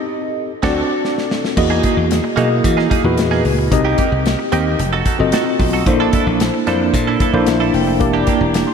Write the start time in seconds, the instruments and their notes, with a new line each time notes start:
Already playing: tine electric piano C4 D#4 G4 A4 D#5
0.63 slap bass D2, clean electric guitar C4 F#4 A4, tine electric piano C4 D4 F#4 A4 D5, kick, snare, crash
1.05 snare
1.18 snare
1.31 snare
1.45 snare
1.57 slap bass E2, tine electric piano A#3 E4 F#4 G#4 D#5, muted clean electric guitar stroke, kick, crash
1.70 clean electric guitar A#3 D#4 G#4
1.83 clean electric guitar A#3 D#4 G#4, kick, closed hi-hat, muted conga
1.97 slap bass E2, muted clean electric guitar stroke
2.11 snare, closed hi-hat, high conga
2.24 muted clean electric guitar stroke
2.36 slap bass B2, clean electric guitar A#3 D#4 G#4, tine electric piano A#3 E4 F#4 G#4 D#5, closed hi-hat, low conga
2.50 muted clean electric guitar stroke
2.64 slap bass E3, muted clean electric guitar stroke, kick, closed hi-hat, muted conga
2.77 clean electric guitar A#3 D#4 G#4, snare
2.90 clean electric guitar A#3 D#4 G#4, kick, closed hi-hat, low conga
3.04 slap bass E2, tine electric piano A#2 E4 F#4 G#4 B4, muted clean electric guitar stroke
3.17 slap bass E2, muted clean electric guitar stroke, snare, closed hi-hat, high conga
3.31 clean electric guitar A#3 D#4 G#4, snare
3.45 slap bass C#2, muted clean electric guitar stroke, open hi-hat, high conga
3.58 muted clean electric guitar stroke
3.71 slap bass C2, tine electric piano C4 D#4 G4 A#4 D#5, muted clean electric guitar stroke, kick, closed hi-hat
3.85 clean electric guitar A#3 D#4 G4
3.98 clean electric guitar A#3 D#4 G4, kick, closed hi-hat, muted conga
4.12 slap bass C2, muted clean electric guitar stroke
4.26 snare, closed hi-hat, high conga
4.39 muted clean electric guitar stroke
4.52 slap bass D#2, clean electric guitar A#3 D#4 G4, tine electric piano C4 D#4 G4 A#4 D#5, closed hi-hat
4.66 muted clean electric guitar stroke
4.79 slap bass F1, muted clean electric guitar stroke, closed hi-hat, muted conga, low conga
4.93 clean electric guitar D#4 F#4 A4
5.06 clean electric guitar D#4 F#4 A4, kick, closed hi-hat
5.19 slap bass F#1, tine electric piano C4 F4 F#4 A4 D#5, muted clean electric guitar stroke
5.32 clean electric guitar D#4 F#4 A4, snare, closed hi-hat, high conga
5.46 muted clean electric guitar stroke
5.59 slap bass B1, muted clean electric guitar stroke, kick, open hi-hat, high conga
5.73 clean electric guitar D#4 F#4 A4
5.86 slap bass A#1, tine electric piano A#3 D4 E4 A4 C5, muted clean electric guitar stroke, kick, closed hi-hat
6.00 clean electric guitar D4 E4 A4
6.13 clean electric guitar D4 E4 A4, kick, closed hi-hat, muted conga
6.27 slap bass A#1, muted clean electric guitar stroke
6.40 snare, closed hi-hat, high conga
6.54 muted clean electric guitar stroke
6.67 slap bass F2, tine electric piano A#3 D4 E4 A4 C5, clean electric guitar D4 E4 A4, snare, closed hi-hat, low conga
6.81 muted clean electric guitar stroke
6.94 slap bass A#2, muted clean electric guitar stroke, kick, closed hi-hat, muted conga
7.07 clean electric guitar D4 E4 A4
7.20 clean electric guitar D4 E4 A4, kick, closed hi-hat, low conga
7.33 slap bass A#1, tine electric piano A#3 D4 E4 A4 C5, muted clean electric guitar stroke
7.46 slap bass A#1, tine electric piano E5, muted clean electric guitar stroke, snare, closed hi-hat, high conga
7.60 clean electric guitar D4 E4 A4
7.74 slap bass F1, tine electric piano G5, muted clean electric guitar stroke, open hi-hat, high conga
7.87 tine electric piano F5, muted clean electric guitar stroke
8.00 slap bass E1, tine electric piano A#3 D4 E4 G4 D5, muted clean electric guitar stroke, kick, closed hi-hat, muted conga
8.13 clean electric guitar A#3 D4 G4
8.27 clean electric guitar A#3 D4 G4, tine electric piano G5, kick, closed hi-hat, muted conga
8.41 slap bass E1, tine electric piano A#5, muted clean electric guitar stroke
8.54 tine electric piano D6, snare, closed hi-hat, high conga
8.67 tine electric piano C6, muted clean electric guitar stroke